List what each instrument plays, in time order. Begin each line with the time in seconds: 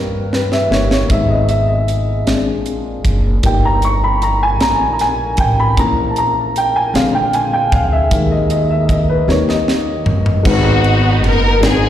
Already playing: upright bass G2, upright piano G3 A#3 D#4 A#4 B4 C#5, french horn section G3 A#3 D#4 G4
0.33 upright piano B4, snare
0.52 upright piano E5, snare
0.70 upright bass G1, upright piano G3 A#3 D#4 C#5, snare
0.91 upright piano C#5, snare
1.09 upright bass G#1, upright piano G#3 B3 D#4 E5, french horn section G#3 B3 G#4, kick, closed hi-hat
1.30 upright piano D#5
1.49 upright piano E5, closed hi-hat
1.68 upright piano D#5
1.88 closed hi-hat
2.26 upright bass A#1, upright piano G#3 C4 D4, french horn section A#3 D4 F4, snare, closed hi-hat
2.66 closed hi-hat
3.04 upright bass F#1, kick, closed hi-hat
3.43 upright bass G1, upright piano G3 A#3 D#4 G5, french horn section G3 D#4 A#4, kick, closed hi-hat
3.65 upright piano A#5
3.82 upright piano C#6, closed hi-hat
4.04 upright piano B5
4.22 upright piano A#5, closed hi-hat
4.43 upright piano G#5
4.60 upright bass A#1, upright piano A#5, snare, closed hi-hat
4.93 upright piano A#5
4.99 upright piano G#5, snare, closed hi-hat
5.37 upright bass A1, upright piano G5, kick, closed hi-hat
5.60 upright piano B5
5.77 upright bass A#1, upright piano E3 A#3 C#4 A#5, french horn section C#4 E4, kick, closed hi-hat
6.10 upright piano A5
6.16 upright piano A#5, closed hi-hat
6.56 upright piano G5, closed hi-hat
6.76 upright piano G#5
6.94 upright bass A#1, upright piano D3 G#3 C4 F5, french horn section D4 F4 G#4, snare, closed hi-hat
7.15 upright piano G5
7.33 upright piano G#5, closed hi-hat
7.53 upright piano G5
7.72 upright bass D2, upright piano F5, kick, closed hi-hat
7.85 upright piano F5
7.92 upright piano E5
8.11 upright bass D#2, upright piano D#3 G#3 A#3, french horn section D#4 A#4, kick, closed hi-hat
8.31 upright piano D#5
8.50 upright piano D#5, closed hi-hat
8.70 upright piano E5
8.85 upright piano E5
8.89 upright piano D#5, kick, closed hi-hat
9.10 upright piano B4
9.28 upright bass D#2, upright piano D#3 G3 A#3 C#5, french horn section A#3 G4, snare
9.49 upright piano D#5, snare
9.68 snare
10.06 upright bass G1, floor tom
10.26 floor tom
10.43 upright bass G#1, upright piano G#2 G#3 B3 D#4 F#4, kick, crash
10.47 string section B3 D#4 F#4, upright piano B4
10.84 ride
11.22 upright bass F#1, string section A#4, ride
11.60 upright bass G#1, upright piano G#2 G#3 C4 D#4 F#4 B4, string section C4 G#4, snare, ride
11.64 string section D#4
11.70 upright piano C5